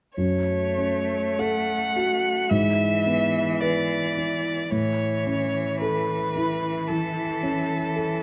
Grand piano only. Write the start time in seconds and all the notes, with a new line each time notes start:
0.17 F#2
0.78 C#4
1.39 A4
1.96 F#4
2.51 G#2
3.06 B3
3.62 B4
4.17 E4
4.72 A2
5.27 C#4
5.82 A4
6.36 E4
6.90 E3
7.43 C#4
7.96 A4